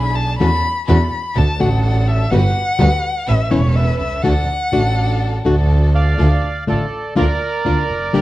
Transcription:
Already playing: B1 D4 E4 G#4 B5
0.15 A5
0.38 E2 E3 A3 C#4 F#4 A4 B5
0.87 E2 E3 A3 C#4 F#4 A4 B5
1.35 D2 D4 F#4 A4 A5
1.59 A1 D3 A3 D4 F#4 A4 F#5
1.83 F#5
2.07 E5
2.30 G1 G3 B3 F#4 G4 B4 F#5
2.79 D2 G3 B3 F#4 G4 B4
3.26 A1 C#4 A4 B4 E5
3.50 E1 E3 B3 C#4 E4 A4 B4 C#5
3.76 E5
3.99 C2 E5
4.22 D2 D3 A3 D4 F#4 A4 F#5
4.72 A1 D3 A3 D4 F#4 A4
5.44 D2 D3 A3 D4 F#4 A4
5.95 D5 F5
6.18 D2 D3 A3 D4 F4 A4
6.67 A1 D3 A3 D4 F4 A4 D5
7.16 D2 D3 A#3 D4 F4 A#4 D5
7.65 D2 D3 A#3 D4 F4 A#4
7.89 F1
8.13 G1 D3 G3 A#3 D4 G4 A#4

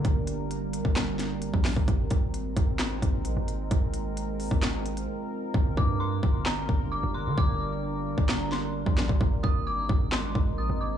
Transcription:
Already playing: G3 A#3 A#4
0.05 G1 C4, kick, closed hi-hat
0.27 closed hi-hat
0.51 closed hi-hat
0.73 closed hi-hat
0.85 G1, kick
0.96 snare, clap, closed hi-hat
1.19 snare, closed hi-hat
1.42 closed hi-hat
1.54 A#1, kick
1.65 snare, clap, open hi-hat
1.76 G1, kick
1.88 G#1 G#3 D#4 A#4, kick, closed hi-hat
2.10 G#1, kick, closed hi-hat
2.34 closed hi-hat
2.57 G#1, kick, closed hi-hat
2.79 snare, clap, closed hi-hat
3.02 G#1, kick, closed hi-hat
3.25 A#1, closed hi-hat
3.37 G#1
3.48 closed hi-hat
3.71 G#1 F4, kick, closed hi-hat
3.94 closed hi-hat
4.17 closed hi-hat
4.40 open hi-hat
4.51 G#1, kick
4.63 snare, clap, closed hi-hat
4.86 closed hi-hat
4.97 closed hi-hat
5.54 G1 G3 A#3 D4, kick
5.77 G2 D6, kick
6.00 C6
6.23 G1, kick
6.46 A#5, snare, clap
6.69 G1, kick
6.92 D6
7.03 G1
7.14 C6
7.26 D3
7.38 G1 D6, kick
8.18 G1, kick
8.29 A#5, snare, clap
8.52 C6, snare
8.86 A#1, kick
8.98 snare, clap
9.09 G1, kick
9.21 G#1 G#3 C4 D#4 A#4, kick
9.43 G#1 D#6, kick
9.67 D6
9.89 G#1, kick
10.12 C6, snare, clap
10.35 G#1, kick
10.58 A#1 D#6
10.70 G#1
10.81 D6

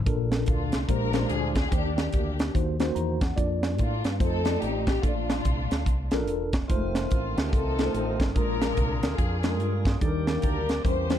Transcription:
0.06 A#1 A#2 D4 F4 A4 A#4, kick, closed hi-hat
0.32 snare, closed hi-hat
0.46 D2 A3 D4 F4, kick, closed hi-hat
0.72 C2, snare, closed hi-hat
0.87 A#1 A#2 G#3 D4 F4 G4 A#4 C5, kick, closed hi-hat
1.13 G#3 D4 G4 C5, snare, closed hi-hat
1.29 D2 G#4, closed hi-hat
1.55 G#4, kick, snare, closed hi-hat
1.71 D#2 D#3 A#3 D4 G4 C5, kick, closed hi-hat
1.78 D5
1.96 G4, snare, closed hi-hat
2.13 D2 A#3 D4 G4, kick, closed hi-hat
2.39 snare, closed hi-hat
2.54 D#2 D#3 A#3 D#4 F#4 C5, kick, closed hi-hat
2.80 A#3 D#4 F#4 C5, snare, closed hi-hat
2.95 E2 A#5, closed hi-hat
3.21 F#5, kick, snare, closed hi-hat
3.36 F2 A#3 D4 F4 D5, kick, closed hi-hat
3.63 snare, closed hi-hat
3.78 A2 A#3 D4 F4, kick, closed hi-hat
4.04 G2, snare, closed hi-hat
4.19 F2 A3 C4 D#4 F4 A4 C5, kick, closed hi-hat
4.45 A3 D#4 F4 D5, snare, closed hi-hat
4.62 A1 G4, closed hi-hat
4.87 G4, kick, snare, closed hi-hat
5.03 A#1 A#2 A3 D4 F4 A4, kick, closed hi-hat
5.09 D5
5.30 snare, closed hi-hat
5.45 C2, kick, closed hi-hat
5.71 D2, snare, closed hi-hat
5.86 C2, kick, closed hi-hat
6.11 A#1 D4 F4 A4 A#4, snare, closed hi-hat
6.28 E1, closed hi-hat
6.53 kick, snare, closed hi-hat
6.68 F1 D#3 G#3 A3 C4 D#4 F4 C5, kick, closed hi-hat
6.75 A3
6.95 snare, closed hi-hat
7.11 A1 F4, kick, closed hi-hat
7.37 D2 G4, snare, closed hi-hat
7.53 C2 C4 D#4 A4, kick, closed hi-hat
7.79 A3 D#4 F4 A#4, snare, closed hi-hat
7.85 C5
7.94 A1, closed hi-hat
8.20 G1, kick, snare, closed hi-hat
8.35 A#1 A#2 C#3 G#3 A#3 D4 F4 G#4 A#4, kick, closed hi-hat
8.40 D3
8.62 snare, closed hi-hat
8.77 C2, kick, closed hi-hat
9.03 D2, snare, closed hi-hat
9.18 F2 D4 F4 G#4, kick, closed hi-hat
9.43 G#3 D4 F4 G#4, snare, closed hi-hat
9.50 A#4
9.59 G2, closed hi-hat
9.85 kick, snare, closed hi-hat
10.01 D#2 D#3 G3 A#3 D4 D#4 G4 A4 D5, kick, closed hi-hat
10.08 A#4
10.27 snare, closed hi-hat
10.42 D2 D4 G4 A#4, kick, closed hi-hat
10.69 snare, closed hi-hat
10.85 E2 E3 G3 A#3 C#4 E4 G4 A#4 C5, kick, closed hi-hat
11.10 G3 C#4 E4 C#5, snare, closed hi-hat

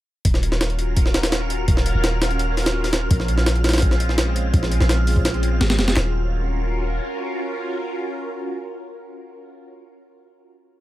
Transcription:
0.25 D#1 F6, kick, open hi-hat
0.34 snare
0.43 open hi-hat
0.52 snare
0.61 snare, open hi-hat
0.70 closed hi-hat
0.79 C#4 F4 F#4 A#4, open hi-hat
0.97 kick, open hi-hat
1.06 snare
1.14 snare, open hi-hat
1.23 snare, open hi-hat
1.32 snare, open hi-hat
1.50 open hi-hat
1.68 D#1, kick, open hi-hat
1.77 snare
1.86 open hi-hat
1.95 D#1
2.04 snare, open hi-hat
2.21 C#4 F4 F#4 A#4, snare, open hi-hat
2.31 closed hi-hat
2.39 open hi-hat
2.57 snare, open hi-hat
2.66 snare, open hi-hat
2.84 snare, open hi-hat
2.93 snare, open hi-hat
3.11 A#1, kick, open hi-hat
3.20 snare
3.28 open hi-hat
3.38 snare
3.46 snare, open hi-hat
3.55 closed hi-hat
3.64 G#3 C4 C#4 F4, snare, open hi-hat
3.69 snare, open hi-hat
3.73 snare, open hi-hat
3.78 snare, open hi-hat
3.82 kick, open hi-hat
3.91 snare
4.00 open hi-hat
4.09 snare
4.18 snare, open hi-hat
4.36 open hi-hat
4.54 A#1, kick, open hi-hat
4.63 snare
4.72 open hi-hat
4.80 A#1, snare
4.89 snare, open hi-hat
5.07 G#3 C4 C#4 F4, open hi-hat
5.16 kick
5.25 snare, open hi-hat
5.34 closed hi-hat
5.43 open hi-hat
5.61 G#1, snare, open hi-hat
5.70 snare, open hi-hat
5.79 F1, snare, open hi-hat
5.88 snare, open hi-hat
5.96 D#1 C#4 F4 F#4 A#4, snare, clap

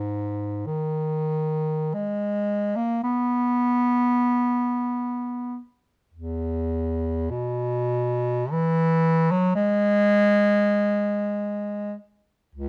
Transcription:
Already playing: G#2
0.67 D#3
1.94 G#3
2.76 A#3
3.03 B3
6.14 E2
7.31 B2
8.52 E3
9.31 F#3
9.55 G#3
12.55 C#2

